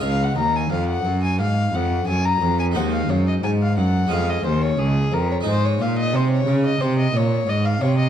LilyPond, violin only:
\new Staff \with { instrumentName = "Violin" } { \time 4/4 \key des \major \tempo 4 = 88 f''16 ges''16 bes''16 aes''16 f''16 ges''8 aes''16 f''8 ges''8 aes''16 bes''8 aes''16 | ges''16 f''16 des''16 ees''16 aes''16 f''16 ges''8 f''16 ees''16 c''16 des''16 aes'8 bes'16 des''16 | c''16 des''16 f''16 ees''16 c''16 des''8 ees''16 c''16 ees''16 des''8 ees''16 f''16 des''16 ees''16 | }